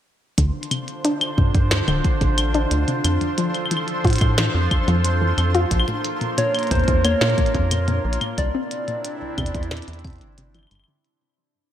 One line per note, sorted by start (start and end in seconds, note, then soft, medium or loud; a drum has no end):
0.38 0.52 D2 medium
0.38 0.52 D3 loud
0.38 3.02 D3 medium
0.38 3.02 D4 medium
0.38 11.06 D4 medium
0.38 8.34 F4 medium
0.38 3.02 C5 medium
0.38 11.06 C6 medium
0.38 kick medium
0.38 closed hi-hat loud
0.63 closed hi-hat soft
0.71 0.86 C3 medium
0.71 closed hi-hat medium
0.71 claves medium
0.88 closed hi-hat soft
1.05 1.13 D4 loud
1.05 closed hi-hat medium
1.21 closed hi-hat soft
1.21 claves medium
1.38 1.52 G2 medium
1.38 1.52 C3 medium
1.38 kick loud
1.55 1.82 G2 medium
1.55 kick loud
1.55 closed hi-hat soft
1.71 1.80 D2 medium
1.71 snare loud
1.71 closed hi-hat loud
1.88 2.02 D1 medium
1.88 2.02 D3 loud
1.88 closed hi-hat soft
1.88 claves medium
2.05 kick loud
2.05 closed hi-hat soft
2.21 2.67 A1 medium
2.21 2.36 C3 medium
2.21 kick medium
2.21 closed hi-hat soft
2.38 closed hi-hat medium
2.38 claves medium
2.54 2.63 D4 loud
2.54 closed hi-hat soft
2.71 2.85 D2 medium
2.71 closed hi-hat medium
2.88 3.03 C3 medium
2.88 closed hi-hat soft
3.04 3.18 F2 medium
3.04 5.69 F3 medium
3.04 5.69 A4 medium
3.04 5.69 C5 medium
3.04 closed hi-hat loud
3.04 claves medium
3.21 3.30 F2 medium
3.21 closed hi-hat soft
3.38 3.52 F3 loud
3.38 closed hi-hat medium
3.54 closed hi-hat soft
3.54 claves soft
3.66 claves soft
3.71 3.86 E3 medium
3.71 closed hi-hat loud
3.77 claves medium
3.88 closed hi-hat soft
4.05 4.18 A2 medium
4.05 4.13 F4 loud
4.05 kick loud
4.05 closed hi-hat soft
4.07 closed hi-hat soft
4.10 closed hi-hat soft
4.13 closed hi-hat soft
4.16 closed hi-hat medium
4.18 4.49 A2 medium
4.18 kick loud
4.18 closed hi-hat medium
4.18 claves medium
4.38 4.53 E3 medium
4.38 snare loud
4.38 closed hi-hat loud
4.55 4.68 F2 medium
4.71 4.80 F2 medium
4.71 kick loud
4.71 closed hi-hat soft
4.71 claves medium
4.88 5.33 F2 medium
4.88 5.02 F3 loud
4.88 closed hi-hat soft
5.04 closed hi-hat loud
5.21 5.36 E3 medium
5.38 5.65 F2 loud
5.38 closed hi-hat medium
5.38 claves medium
5.55 5.63 F4 loud
5.55 closed hi-hat soft
5.71 5.85 A#1 medium
5.71 8.35 A#3 medium
5.71 8.35 A#4 medium
5.71 kick medium
5.71 closed hi-hat medium
5.80 claves medium
5.88 6.02 A2 medium
5.88 closed hi-hat soft
6.05 closed hi-hat medium
6.21 6.30 A#2 medium
6.21 closed hi-hat soft
6.38 6.52 A#2 loud
6.38 6.73 C#5 loud
6.38 closed hi-hat medium
6.55 closed hi-hat soft
6.55 claves medium
6.59 closed hi-hat soft
6.63 closed hi-hat soft
6.67 closed hi-hat soft
6.71 6.85 E2 medium
6.71 6.86 A2 medium
6.71 7.06 C5 loud
6.71 kick loud
6.71 closed hi-hat medium
6.75 closed hi-hat soft
6.80 closed hi-hat soft
6.84 closed hi-hat soft
6.88 7.15 E2 medium
6.88 kick loud
6.88 closed hi-hat soft
7.05 7.13 A#3 loud
7.05 8.37 C#5 loud
7.05 closed hi-hat loud
7.05 claves medium
7.21 7.35 A#2 medium
7.21 snare loud
7.21 closed hi-hat soft
7.30 closed hi-hat soft
7.38 7.53 A2 medium
7.38 kick loud
7.38 closed hi-hat soft
7.46 closed hi-hat soft
7.55 8.00 F2 medium
7.55 kick medium
7.55 closed hi-hat soft
7.71 7.80 A#2 medium
7.71 closed hi-hat loud
7.71 claves medium
7.88 8.03 A#2 loud
7.88 closed hi-hat soft
8.05 8.18 A#1 medium
8.13 closed hi-hat medium
8.21 8.36 A2 medium
8.21 closed hi-hat soft
8.21 claves medium
8.38 8.52 C2 loud
8.38 11.02 C3 medium
8.38 11.02 C4 medium
8.38 11.02 D4 medium
8.38 11.02 E4 medium
8.38 10.67 D5 loud
8.38 kick medium
8.38 closed hi-hat medium
8.55 8.63 C4 loud
8.71 closed hi-hat medium
8.88 9.02 A#2 medium
8.88 closed hi-hat soft
9.05 closed hi-hat medium
9.21 9.30 C2 medium
9.38 9.52 E2 medium
9.38 9.53 C3 loud
9.38 kick loud
9.38 closed hi-hat medium
9.38 claves medium
9.46 closed hi-hat medium
9.55 9.82 E2 loud
9.55 kick loud
9.55 closed hi-hat soft
9.63 closed hi-hat soft
9.71 9.86 A#2 medium
9.71 snare loud
9.71 closed hi-hat medium
9.77 closed hi-hat medium
9.82 closed hi-hat medium
9.88 10.23 E2 medium
9.88 closed hi-hat soft
9.93 closed hi-hat soft
9.99 closed hi-hat soft
10.04 10.20 C3 medium
10.04 kick loud
10.04 closed hi-hat soft
10.04 claves medium
10.07 closed hi-hat soft
10.13 closed hi-hat soft
10.16 closed hi-hat soft
10.18 closed hi-hat soft
10.21 10.67 G1 loud
10.21 closed hi-hat soft
10.38 10.54 C3 loud
10.38 closed hi-hat medium
10.55 10.69 E3 medium
10.55 closed hi-hat soft
10.55 claves soft
10.59 claves soft
10.63 claves soft
10.67 claves soft
10.71 10.85 G1 medium
10.71 10.80 G2 medium
10.71 closed hi-hat medium
10.71 claves medium
10.75 claves medium
10.79 claves medium
10.84 claves medium
10.88 11.03 D3 medium
11.05 closed hi-hat soft